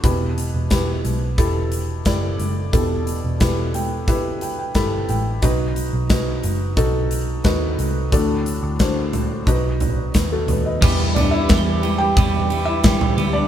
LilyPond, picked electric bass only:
\new Staff \with { instrumentName = "Picked electric bass" } { \clef bass \time 4/4 \key e \minor \tempo 4 = 89 e,,8. e,,8. b,,8 e,,4 fis,,8 fis,,8 | e,,8. e,,16 e,,2 g,,8 a,,8 | b,,8. b,,8. fis,,8 b,,4 dis,8 c,8 | d,8. d,16 d,4 b,,4 dis,8 dis,8 |
e,4 e,4 e,4. d,8 | }